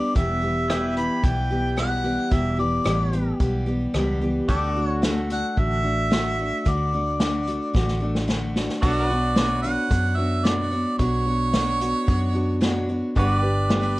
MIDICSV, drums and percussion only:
0, 0, Header, 1, 2, 480
1, 0, Start_track
1, 0, Tempo, 542005
1, 133, Time_signature, 4, 2, 24, 8
1, 12397, End_track
2, 0, Start_track
2, 0, Title_t, "Drums"
2, 138, Note_on_c, 9, 42, 51
2, 139, Note_on_c, 9, 36, 96
2, 227, Note_off_c, 9, 42, 0
2, 228, Note_off_c, 9, 36, 0
2, 619, Note_on_c, 9, 37, 110
2, 619, Note_on_c, 9, 42, 58
2, 708, Note_off_c, 9, 37, 0
2, 708, Note_off_c, 9, 42, 0
2, 858, Note_on_c, 9, 42, 61
2, 946, Note_off_c, 9, 42, 0
2, 1095, Note_on_c, 9, 42, 65
2, 1096, Note_on_c, 9, 36, 107
2, 1184, Note_off_c, 9, 42, 0
2, 1185, Note_off_c, 9, 36, 0
2, 1573, Note_on_c, 9, 37, 95
2, 1573, Note_on_c, 9, 42, 55
2, 1662, Note_off_c, 9, 37, 0
2, 1662, Note_off_c, 9, 42, 0
2, 2049, Note_on_c, 9, 42, 62
2, 2052, Note_on_c, 9, 36, 101
2, 2137, Note_off_c, 9, 42, 0
2, 2141, Note_off_c, 9, 36, 0
2, 2530, Note_on_c, 9, 37, 110
2, 2530, Note_on_c, 9, 42, 65
2, 2618, Note_off_c, 9, 37, 0
2, 2618, Note_off_c, 9, 42, 0
2, 2772, Note_on_c, 9, 42, 57
2, 2860, Note_off_c, 9, 42, 0
2, 3011, Note_on_c, 9, 42, 55
2, 3013, Note_on_c, 9, 36, 90
2, 3100, Note_off_c, 9, 42, 0
2, 3102, Note_off_c, 9, 36, 0
2, 3492, Note_on_c, 9, 37, 89
2, 3492, Note_on_c, 9, 42, 50
2, 3581, Note_off_c, 9, 37, 0
2, 3581, Note_off_c, 9, 42, 0
2, 3971, Note_on_c, 9, 42, 48
2, 3974, Note_on_c, 9, 36, 89
2, 4060, Note_off_c, 9, 42, 0
2, 4063, Note_off_c, 9, 36, 0
2, 4456, Note_on_c, 9, 38, 116
2, 4456, Note_on_c, 9, 42, 59
2, 4544, Note_off_c, 9, 38, 0
2, 4544, Note_off_c, 9, 42, 0
2, 4696, Note_on_c, 9, 42, 60
2, 4784, Note_off_c, 9, 42, 0
2, 4932, Note_on_c, 9, 42, 59
2, 4937, Note_on_c, 9, 36, 91
2, 5020, Note_off_c, 9, 42, 0
2, 5025, Note_off_c, 9, 36, 0
2, 5418, Note_on_c, 9, 38, 97
2, 5418, Note_on_c, 9, 42, 55
2, 5506, Note_off_c, 9, 38, 0
2, 5506, Note_off_c, 9, 42, 0
2, 5896, Note_on_c, 9, 42, 64
2, 5899, Note_on_c, 9, 36, 95
2, 5985, Note_off_c, 9, 42, 0
2, 5988, Note_off_c, 9, 36, 0
2, 6375, Note_on_c, 9, 38, 114
2, 6375, Note_on_c, 9, 42, 63
2, 6463, Note_off_c, 9, 38, 0
2, 6463, Note_off_c, 9, 42, 0
2, 6619, Note_on_c, 9, 42, 57
2, 6707, Note_off_c, 9, 42, 0
2, 6859, Note_on_c, 9, 36, 93
2, 6859, Note_on_c, 9, 38, 60
2, 6948, Note_off_c, 9, 36, 0
2, 6948, Note_off_c, 9, 38, 0
2, 6978, Note_on_c, 9, 38, 57
2, 7067, Note_off_c, 9, 38, 0
2, 7217, Note_on_c, 9, 38, 61
2, 7306, Note_off_c, 9, 38, 0
2, 7338, Note_on_c, 9, 38, 67
2, 7427, Note_off_c, 9, 38, 0
2, 7578, Note_on_c, 9, 38, 81
2, 7667, Note_off_c, 9, 38, 0
2, 7698, Note_on_c, 9, 38, 68
2, 7786, Note_off_c, 9, 38, 0
2, 7818, Note_on_c, 9, 36, 99
2, 7819, Note_on_c, 9, 49, 78
2, 7907, Note_off_c, 9, 36, 0
2, 7908, Note_off_c, 9, 49, 0
2, 8293, Note_on_c, 9, 38, 111
2, 8293, Note_on_c, 9, 42, 59
2, 8381, Note_off_c, 9, 38, 0
2, 8381, Note_off_c, 9, 42, 0
2, 8538, Note_on_c, 9, 42, 59
2, 8627, Note_off_c, 9, 42, 0
2, 8775, Note_on_c, 9, 36, 104
2, 8775, Note_on_c, 9, 42, 64
2, 8864, Note_off_c, 9, 36, 0
2, 8864, Note_off_c, 9, 42, 0
2, 9257, Note_on_c, 9, 38, 93
2, 9257, Note_on_c, 9, 42, 60
2, 9345, Note_off_c, 9, 38, 0
2, 9345, Note_off_c, 9, 42, 0
2, 9734, Note_on_c, 9, 42, 56
2, 9736, Note_on_c, 9, 36, 95
2, 9822, Note_off_c, 9, 42, 0
2, 9824, Note_off_c, 9, 36, 0
2, 10214, Note_on_c, 9, 38, 110
2, 10214, Note_on_c, 9, 42, 69
2, 10303, Note_off_c, 9, 38, 0
2, 10303, Note_off_c, 9, 42, 0
2, 10458, Note_on_c, 9, 42, 64
2, 10547, Note_off_c, 9, 42, 0
2, 10698, Note_on_c, 9, 36, 111
2, 10698, Note_on_c, 9, 42, 56
2, 10786, Note_off_c, 9, 36, 0
2, 10787, Note_off_c, 9, 42, 0
2, 11176, Note_on_c, 9, 38, 99
2, 11176, Note_on_c, 9, 42, 49
2, 11264, Note_off_c, 9, 38, 0
2, 11264, Note_off_c, 9, 42, 0
2, 11656, Note_on_c, 9, 42, 52
2, 11657, Note_on_c, 9, 36, 87
2, 11745, Note_off_c, 9, 36, 0
2, 11745, Note_off_c, 9, 42, 0
2, 12135, Note_on_c, 9, 38, 105
2, 12135, Note_on_c, 9, 42, 66
2, 12224, Note_off_c, 9, 38, 0
2, 12224, Note_off_c, 9, 42, 0
2, 12397, End_track
0, 0, End_of_file